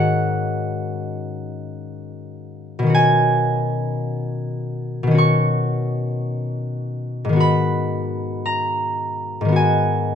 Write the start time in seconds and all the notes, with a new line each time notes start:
Already playing: G#2 D#3 C#4 F#4 D#5 F#5
2.79 B2 D#3
2.86 C#4 F#4
2.94 G#5
5.03 B2
5.07 D#3 C#4
5.15 F#4 C#6
7.25 G#2
7.29 D#3 B3
7.36 F#4
7.40 B5
8.46 A#5
9.41 G#2
9.45 D#3 B3
9.52 F#4 G#5